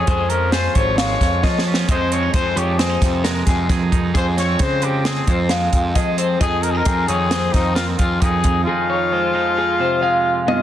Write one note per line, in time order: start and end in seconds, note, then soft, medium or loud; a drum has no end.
0.00 0.75 F2 medium
0.00 0.30 C#4 medium
0.00 0.53 F4 medium
0.00 0.31 G#4 loud
0.07 0.67 F2 medium
0.07 0.99 G#3 medium
0.07 0.53 C5 medium
0.07 kick loud
0.07 closed hi-hat medium
0.29 1.89 F3 medium
0.29 1.66 C#4 medium
0.29 0.51 A#4 medium
0.29 closed hi-hat medium
0.52 1.44 F4 medium
0.52 0.76 G#4 medium
0.52 0.76 C5 medium
0.52 snare medium
0.52 closed hi-hat medium
0.75 1.15 G#1 medium
0.75 1.43 F2 medium
0.75 0.97 C5 medium
0.75 0.97 C#5 loud
0.75 kick medium
0.75 closed hi-hat medium
0.98 1.90 G#3 medium
0.98 1.62 C#5 medium
0.98 1.43 F5 medium
0.98 snare loud
0.98 closed hi-hat medium
1.21 1.41 F2 medium
1.21 kick medium
1.21 snare soft
1.21 closed hi-hat medium
1.43 1.88 F2 medium
1.43 1.83 F3 medium
1.43 1.91 F4 medium
1.43 1.65 D#5 medium
1.43 kick medium
1.43 snare soft
1.59 snare medium
1.65 1.87 C#4 medium
1.65 1.89 C#5 medium
1.74 snare medium
1.89 2.28 F2 loud
1.89 3.69 F2 medium
1.89 2.56 F3 medium
1.89 2.34 G#3 medium
1.89 2.11 D#4 medium
1.89 3.70 G#4 medium
1.89 2.14 C5 loud
1.89 2.34 D#5 medium
1.89 kick loud
1.89 closed hi-hat medium
2.11 2.23 C4 medium
2.11 2.33 C#5 medium
2.11 closed hi-hat medium
2.23 2.56 D#4 soft
2.34 2.54 F2 medium
2.34 3.25 G#3 medium
2.34 2.57 G#4 medium
2.34 2.59 C5 loud
2.34 kick loud
2.34 closed hi-hat medium
2.56 2.96 F2 medium
2.56 4.12 F3 medium
2.56 2.79 D#4 medium
2.56 2.79 G4 medium
2.56 2.79 C#5 medium
2.56 closed hi-hat medium
2.78 2.90 C4 medium
2.78 3.01 G#4 medium
2.78 3.24 C5 medium
2.78 snare medium
2.78 closed hi-hat medium
2.90 3.91 D#4 soft
3.01 3.41 F2 medium
3.01 4.12 C3 medium
3.01 kick medium
3.01 snare soft
3.01 closed hi-hat medium
3.24 4.60 G#3 medium
3.24 3.46 A#4 medium
3.24 snare loud
3.24 closed hi-hat medium
3.46 3.67 F2 medium
3.46 3.69 G#4 medium
3.46 kick medium
3.46 snare soft
3.46 closed hi-hat medium
3.69 3.89 F2 medium
3.69 4.13 F2 medium
3.69 4.14 G#4 medium
3.69 4.14 A#4 medium
3.69 kick loud
3.69 snare soft
3.69 closed hi-hat medium
3.92 4.12 F2 medium
3.92 4.12 D#4 medium
3.92 kick medium
3.92 closed hi-hat medium
4.14 5.26 F2 medium
4.14 4.55 F2 loud
4.14 4.37 G#4 medium
4.14 5.96 G#4 medium
4.14 4.26 C5 loud
4.14 kick loud
4.14 closed hi-hat medium
4.37 4.82 C4 medium
4.37 4.59 C#5 medium
4.37 4.63 C#5 medium
4.37 snare soft
4.37 closed hi-hat medium
4.59 5.19 C#3 medium
4.59 5.50 G#3 medium
4.59 5.05 C5 medium
4.59 4.86 C5 loud
4.59 kick loud
4.59 snare soft
4.59 closed hi-hat medium
4.82 6.38 F3 medium
4.82 5.05 C4 medium
4.82 5.08 G4 medium
4.82 closed hi-hat medium
5.05 6.18 C4 medium
5.05 5.28 G#4 medium
5.05 5.29 G#4 medium
5.05 snare loud
5.05 closed hi-hat medium
5.27 5.94 F2 medium
5.27 5.67 F2 medium
5.27 5.51 C5 medium
5.27 kick medium
5.27 closed hi-hat medium
5.49 6.86 G#3 medium
5.49 5.95 F5 medium
5.49 snare loud
5.49 closed hi-hat medium
5.73 5.93 F2 medium
5.73 kick medium
5.73 closed hi-hat medium
5.95 6.40 F2 medium
5.95 6.35 F3 medium
5.95 9.46 G#4 medium
5.95 6.18 D#5 medium
5.95 kick loud
5.95 closed hi-hat medium
6.18 6.41 C4 medium
6.18 6.40 C5 medium
6.18 closed hi-hat medium
6.41 6.80 F2 loud
6.41 7.53 F2 medium
6.41 6.63 D#4 medium
6.41 6.64 G#4 loud
6.41 6.86 D#5 medium
6.41 kick loud
6.41 closed hi-hat medium
6.63 6.75 C4 medium
6.63 6.72 A#4 loud
6.63 closed hi-hat medium
6.71 7.08 D#4 soft
6.71 6.78 G#4 medium
6.77 7.09 A#4 loud
6.85 7.06 F2 medium
6.85 7.77 C4 medium
6.85 7.09 G#4 medium
6.85 kick loud
6.85 closed hi-hat medium
7.08 7.48 F2 medium
7.08 9.33 D#3 medium
7.08 7.31 D#4 medium
7.08 7.55 G#4 loud
7.08 7.31 C#5 medium
7.08 closed hi-hat medium
7.31 8.21 D#4 medium
7.31 7.77 C5 medium
7.31 snare loud
7.31 closed hi-hat medium
7.53 8.21 F2 medium
7.53 7.94 F2 medium
7.53 7.75 D#4 medium
7.53 kick medium
7.53 snare soft
7.53 closed hi-hat medium
7.75 9.12 C4 medium
7.75 7.86 F4 medium
7.75 7.99 A#4 medium
7.75 snare loud
7.75 closed hi-hat medium
7.98 8.19 F2 medium
7.98 8.22 F4 medium
7.98 8.22 G#4 medium
7.98 kick medium
7.98 closed hi-hat medium
8.21 8.42 F2 medium
8.21 8.67 F2 medium
8.21 8.44 D#4 medium
8.21 8.63 G#4 medium
8.21 8.67 A#4 medium
8.21 kick loud
8.21 closed hi-hat medium
8.44 8.64 F2 medium
8.44 8.65 D#4 medium
8.44 kick medium
8.44 closed hi-hat medium
8.64 10.47 F2 medium
8.64 10.42 F4 medium
8.64 8.90 G#4 medium
8.69 8.88 D#4 medium
8.90 9.33 D#4 medium
8.90 9.13 C#5 medium
9.12 10.01 G#3 medium
9.12 9.58 C5 medium
9.34 10.62 F3 medium
9.34 9.56 D#4 medium
9.57 10.62 D#4 medium
9.57 9.80 G#4 medium
9.80 10.62 C3 medium
9.80 10.02 C5 medium
10.02 10.62 G#3 medium
10.02 10.48 F5 medium
10.47 10.62 G2 medium
10.47 10.62 F4 medium
10.47 10.62 D#5 medium
10.47 high tom medium